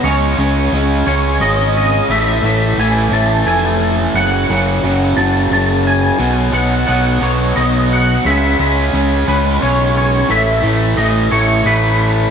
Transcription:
<<
  \new Staff \with { instrumentName = "Clean electric guitar" } { \time 6/8 \key a \lydian \tempo 4. = 58 cis''4. cis''8 dis''8 dis''8 | e''8 e''8 gis''8 a''8 gis''4 | fis''4. a''8 a''8 gis''8~ | gis''8 fis''8 fis''8 cis''8 dis''8 fis''8 |
e''4. b'8 cis''8 cis''8 | e''4 dis''8 cis''8 b'4 | }
  \new Staff \with { instrumentName = "Overdriven electric guitar" } { \clef bass \time 6/8 \key a \lydian <cis gis cis'>8 <cis gis cis'>8 <cis gis cis'>8 <cis gis cis'>8 <cis gis cis'>4 | <a, e a>8 <a, e a>8 <a, e a>8 <a, e a>8 <a, e a>4 | <fis, cis fis>8 <fis, cis fis>8 <fis, cis fis>8 <fis, cis fis>8 <fis, cis fis>4 | <b, fis b>8 <b, fis b>8 <b, fis b>8 <b, fis b>8 <b, fis b>4 |
<cis gis cis'>8 <cis gis cis'>8 <cis gis cis'>8 <cis gis cis'>8 <cis gis cis'>4 | <a, e a>8 <a, e a>8 <a, e a>8 <a, e a>8 <a, e a>4 | }
  \new Staff \with { instrumentName = "Fingered electric bass" } { \clef bass \time 6/8 \key a \lydian cis,8 cis,8 cis,8 cis,8 gis,,4 | a,,8 a,,8 a,,8 a,,8 f,,4 | fis,,8 fis,,8 fis,,8 fis,,8 fis,,4 | b,,8 b,,8 b,,8 b,,8 b,,4 |
cis,8 cis,8 cis,8 cis,8 b,,4 | a,,8 a,,8 a,,8 a,,8 a,,4 | }
>>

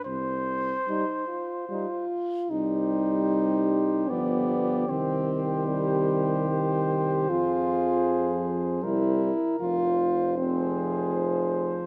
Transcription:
<<
  \new Staff \with { instrumentName = "Trumpet" } { \time 3/4 \key c \minor \tempo 4 = 76 c''2~ c''8 r8 | c''2 d''4 | c''2.~ | c''2~ c''8 r8 |
c''2. | }
  \new Staff \with { instrumentName = "Flugelhorn" } { \time 3/4 \key c \minor r4 ees'4 ees'4 | g'2.~ | g'2. | aes'2 bes'4~ |
bes'8 r8 aes'2 | }
  \new Staff \with { instrumentName = "French horn" } { \time 3/4 \key c \minor r4 ees'8 f'8 f'4 | ees'2 b4 | c'4 g4 g'4 | f'4. r8 e'4 |
f'4 c'4 r4 | }
  \new Staff \with { instrumentName = "Trombone" } { \clef bass \time 3/4 \key c \minor r4 g4 g4 | g2 f4 | ees2. | f2 g8 r8 |
f2. | }
  \new Staff \with { instrumentName = "Tuba" } { \clef bass \time 3/4 \key c \minor c,4 r2 | c,2 g,,4 | c,2. | f,2 c,8 r8 |
f,,2. | }
>>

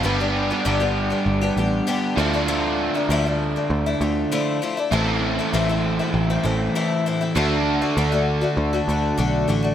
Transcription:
<<
  \new Staff \with { instrumentName = "Overdriven electric guitar" } { \time 4/4 \key d \dorian \tempo 4 = 98 <g b d' b'>2.~ <g b d' b'>8 <d d' f' a'>8~ | <d d' f' a'>2.~ <d d' f' a'>8 r8 | <a, e a c' e' a'>1 | <d d' fis' a'>1 | }
  \new Staff \with { instrumentName = "Twelve-string acoustic guitar" } { \time 4/4 \key d \dorian <g, d g b d' g'>16 <g b d' g'>8 <g b d' g'>16 <g, d g b d' g'>16 <g b d' g'>8 <g b d' g'>8 <g b d' g'>16 <g b d' g'>8 <g, d g b d' g'>8 <f a d' e'>16 <a d' e'>16 | <d f a d'>8. <a d' e'>16 <d f a d' e'>16 <a d'>8 <a d'>8 <a d' e'>16 <f a d'>8 <d f a d' e'>8 <f a d' e'>16 <a d' e'>16 | <a, e a c' e'>8. <a c' e'>16 <a, e a c' e'>16 <a c' e'>8 <a c' e'>8 <a c' e'>16 <e a c' e'>8 <a, e a c' e'>8 <e a c' e'>16 <a c' e'>16 | <d a d' fis'>8. <a d' fis'>16 <d a d' fis'>16 <a d' fis'>8 <a d' fis'>8 <a d' fis'>16 <d a d' fis'>8 <d a d' fis'>8 <d a d' fis'>16 <a d' fis'>16 | }
  \new Staff \with { instrumentName = "Picked electric bass" } { \clef bass \time 4/4 \key d \dorian g,,4 g,,4 g,,8 a,,8 r8 d,8~ | d,4 d,4 d,8 d,8 r4 | a,,4 a,,4 a,,8 a,,8 r4 | d,4 d,4 d,8 d,8 b,,8 a,,8 | }
>>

